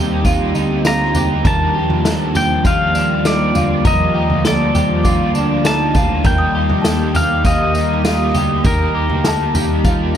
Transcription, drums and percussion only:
0.25 kick, floor tom, tambourine
0.55 tambourine
0.85 snare, tambourine
1.15 floor tom, tambourine
1.45 kick, floor tom, tambourine
1.90 floor tom
2.05 snare, tambourine
2.35 floor tom, tambourine
2.65 kick, floor tom, tambourine
2.95 tambourine
3.25 snare, tambourine
3.55 floor tom, tambourine
3.85 kick, floor tom, tambourine
4.30 floor tom
4.45 snare, tambourine
4.75 floor tom, tambourine
5.05 kick, floor tom, tambourine
5.35 tambourine
5.65 snare, tambourine
5.95 kick, floor tom, tambourine
6.25 kick, floor tom, tambourine
6.70 floor tom
6.84 snare, tambourine
7.15 floor tom, tambourine
7.45 kick, floor tom, tambourine
7.75 tambourine
8.05 snare, tambourine
8.34 floor tom, tambourine
8.65 kick, floor tom, tambourine
9.10 floor tom
9.24 snare, tambourine
9.55 floor tom, tambourine
9.85 kick, floor tom, tambourine

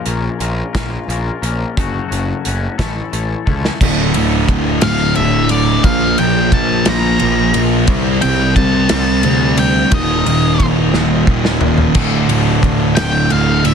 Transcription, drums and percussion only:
0.06 closed hi-hat
0.40 closed hi-hat
0.75 kick, snare, closed hi-hat
1.10 closed hi-hat
1.43 closed hi-hat
1.77 kick, closed hi-hat
2.12 closed hi-hat
2.45 closed hi-hat
2.79 kick, snare, closed hi-hat
3.13 closed hi-hat
3.47 kick
3.65 snare
3.81 kick, crash
4.14 ride
4.48 kick, ride
4.81 snare, ride
5.15 ride
5.49 ride
5.84 kick, ride
6.18 ride
6.52 kick, ride
6.85 snare, ride
7.19 ride
7.54 ride
7.87 kick, ride
8.22 ride
8.56 kick, ride
8.89 snare, ride
9.23 ride
9.57 ride
9.91 kick, ride
10.26 ride
10.60 kick, ride
10.94 snare
11.27 kick
11.45 snare
11.61 floor tom
11.78 floor tom
11.94 kick, crash
12.29 ride
12.63 kick, ride
12.96 snare, ride
13.30 ride
13.65 ride

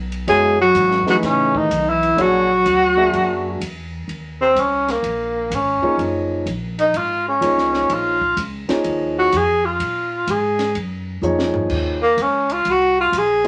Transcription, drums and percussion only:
0.12 ride
0.28 ride
0.75 hi-hat pedal, ride
0.91 snare
1.07 snare
1.23 snare, ride
1.55 kick
1.71 hi-hat pedal, ride
2.03 ride
2.18 ride
2.66 hi-hat pedal, ride
3.13 ride
3.61 hi-hat pedal, ride
4.09 ride
4.56 hi-hat pedal, ride
4.88 snare, ride
5.04 ride
5.52 hi-hat pedal, ride
5.83 kick
5.99 ride
6.47 hi-hat pedal, ride
6.79 ride
6.94 ride
7.42 hi-hat pedal, ride
7.58 snare
7.74 snare
7.90 ride
8.21 kick
8.37 hi-hat pedal, ride
8.69 snare, ride
8.84 ride
9.32 hi-hat pedal, ride
9.80 ride
10.27 hi-hat pedal, ride
10.59 snare, ride
10.75 ride
11.23 hi-hat pedal
11.39 snare
11.54 floor tom
11.70 kick, crash
12.18 hi-hat pedal, ride
12.50 ride
12.65 ride
13.13 hi-hat pedal, ride
13.45 ride

